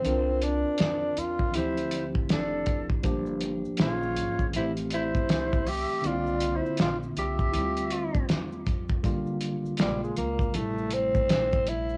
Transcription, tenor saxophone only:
0, 0, Header, 1, 2, 480
1, 0, Start_track
1, 0, Tempo, 750000
1, 25, Time_signature, 4, 2, 24, 8
1, 7663, End_track
2, 0, Start_track
2, 0, Title_t, "Tenor saxophone"
2, 0, Program_c, 0, 66
2, 0, Note_on_c, 0, 60, 84
2, 278, Note_on_c, 0, 62, 88
2, 288, Note_off_c, 0, 60, 0
2, 759, Note_on_c, 0, 65, 93
2, 768, Note_off_c, 0, 62, 0
2, 995, Note_on_c, 0, 64, 94
2, 1004, Note_off_c, 0, 65, 0
2, 1313, Note_off_c, 0, 64, 0
2, 1482, Note_on_c, 0, 62, 69
2, 1836, Note_off_c, 0, 62, 0
2, 2440, Note_on_c, 0, 65, 95
2, 2887, Note_off_c, 0, 65, 0
2, 2918, Note_on_c, 0, 64, 89
2, 3021, Note_off_c, 0, 64, 0
2, 3160, Note_on_c, 0, 64, 87
2, 3641, Note_on_c, 0, 67, 103
2, 3651, Note_off_c, 0, 64, 0
2, 3883, Note_on_c, 0, 65, 94
2, 3893, Note_off_c, 0, 67, 0
2, 4201, Note_on_c, 0, 64, 81
2, 4211, Note_off_c, 0, 65, 0
2, 4353, Note_off_c, 0, 64, 0
2, 4362, Note_on_c, 0, 65, 92
2, 4464, Note_off_c, 0, 65, 0
2, 4601, Note_on_c, 0, 67, 89
2, 5287, Note_off_c, 0, 67, 0
2, 6277, Note_on_c, 0, 55, 82
2, 6409, Note_off_c, 0, 55, 0
2, 6421, Note_on_c, 0, 56, 68
2, 6503, Note_off_c, 0, 56, 0
2, 6514, Note_on_c, 0, 58, 75
2, 6754, Note_on_c, 0, 57, 83
2, 6763, Note_off_c, 0, 58, 0
2, 6997, Note_on_c, 0, 60, 98
2, 7006, Note_off_c, 0, 57, 0
2, 7479, Note_on_c, 0, 64, 92
2, 7489, Note_off_c, 0, 60, 0
2, 7663, Note_off_c, 0, 64, 0
2, 7663, End_track
0, 0, End_of_file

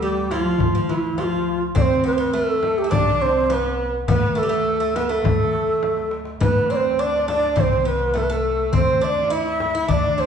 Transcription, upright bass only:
0, 0, Header, 1, 2, 480
1, 0, Start_track
1, 0, Tempo, 580833
1, 1454, Time_signature, 4, 2, 24, 8
1, 8479, End_track
2, 0, Start_track
2, 0, Title_t, "Upright bass"
2, 0, Program_c, 0, 32
2, 0, Note_on_c, 0, 38, 90
2, 459, Note_off_c, 0, 38, 0
2, 493, Note_on_c, 0, 38, 75
2, 1421, Note_off_c, 0, 38, 0
2, 1453, Note_on_c, 0, 38, 83
2, 2381, Note_off_c, 0, 38, 0
2, 2414, Note_on_c, 0, 36, 71
2, 3342, Note_off_c, 0, 36, 0
2, 3372, Note_on_c, 0, 38, 95
2, 4301, Note_off_c, 0, 38, 0
2, 4339, Note_on_c, 0, 38, 75
2, 5264, Note_off_c, 0, 38, 0
2, 5299, Note_on_c, 0, 38, 87
2, 6224, Note_off_c, 0, 38, 0
2, 6257, Note_on_c, 0, 36, 75
2, 7183, Note_off_c, 0, 36, 0
2, 7219, Note_on_c, 0, 38, 89
2, 8144, Note_off_c, 0, 38, 0
2, 8175, Note_on_c, 0, 38, 78
2, 8479, Note_off_c, 0, 38, 0
2, 8479, End_track
0, 0, End_of_file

